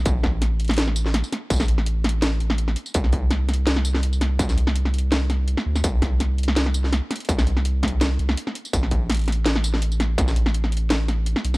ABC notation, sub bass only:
X:1
M:4/4
L:1/8
Q:"Swing 16ths" 1/4=166
K:Am
V:1 name="Sub bass" clef=bass
A,,, A,,,4- A,,, z2 | A,,, A,,,4 A,,,2 z | C,,8 | C,, C,,4- C,, z D,, |
C,, C,,4- C,, z2 | C,, C,,4 C,, z2 | A,,,8 | A,,, A,,,4- A,,, z B,,, |]